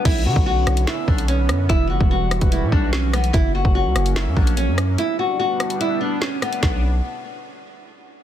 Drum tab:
CC |x---------------|----------------|----------------|----------------|
HH |x-----xx---xx-x-|x-----xxx-----xx|x-----xx---xx-x-|x-----xxx-----xx|
SD |------r-o-----r-|------r-----o-r-|------r-o-----r-|------r-----o-r-|
BD |o--o------o-----|o--o---o--o-----|o--o------o-----|----------------|

CC |----------------|
HH |----------------|
SD |o---------------|
BD |o---------------|